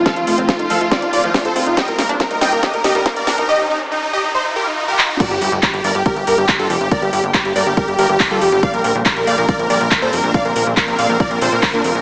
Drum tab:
CC |----------------|----------------|----------------|x---------------|
HH |xxoxxxoxxxoxoxox|xxoxxxoxxxoxxxox|----------------|xxoxxxoxxxoxxxox|
CP |----------------|----------------|--------------x-|----x-------x---|
SD |o---o---o---o---|o-o-o-o-o-o-o-o-|----------------|----------------|
BD |o---o---o---o---|o---o---o---o---|----------------|o---o---o---o---|

CC |----------------|----------------|----------------|
HH |xxoxxxoxxxo-oxox|xxo-xxoxxxoxxxox|xxoxxxoxxxoxoxox|
CP |----x-------x---|----x-------x---|----x-------x---|
SD |----------------|----------------|----------------|
BD |o---o---o---o---|o---o---o---o---|o---o---o---o---|